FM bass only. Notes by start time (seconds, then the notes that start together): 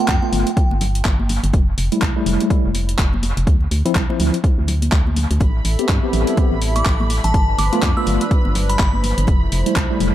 0.08 F2
0.33 G1
0.71 G1
1.05 G1
1.44 G1
1.54 F1
1.78 F1
2.02 C2
2.26 F1
2.65 F1
2.99 F1
3.37 F1
3.47 D2
3.71 D2
3.95 C2
4.20 D2
4.58 D2
4.92 D2
5.31 D2
5.41 A1
5.65 A1
5.89 G2
6.13 A1
6.52 A1
6.86 A1
7.24 A1
7.34 G1
7.58 G1
7.83 F2
8.07 G1
8.45 G1
8.79 G1
9.18 G1
9.52 F1
9.76 C2
10.00 F1